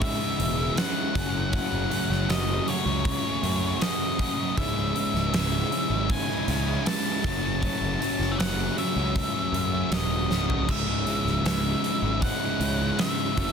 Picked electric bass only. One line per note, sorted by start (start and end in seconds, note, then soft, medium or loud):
0.00 0.12 G#1 medium
0.39 0.68 E1 loud
1.15 1.59 F#1 medium
1.72 1.87 F#1 loud
2.10 2.25 F#1 medium
2.29 2.58 F#1 medium
2.86 3.15 C#2 medium
3.43 3.72 F#2 loud
4.57 4.72 C#1 loud
4.76 4.91 C#1 loud
5.14 5.29 C#1 medium
5.33 5.62 C#1 loud
5.90 6.19 G#1 medium
6.48 6.77 C#2 loud
7.24 7.68 F#1 medium
7.81 7.96 F#1 loud
8.19 8.34 F#1 medium
8.39 8.68 F#1 loud
8.96 9.26 C#2 medium
9.53 9.82 F#2 loud
9.92 10.26 D#1 loud
10.29 10.64 C#1 medium
10.68 10.83 C#1 loud
10.87 11.02 C#1 loud
11.25 11.40 C#1 medium
11.44 11.74 C#1 loud
12.02 12.32 G#1 loud
12.60 12.90 C#2 loud
13.37 13.52 F#1 loud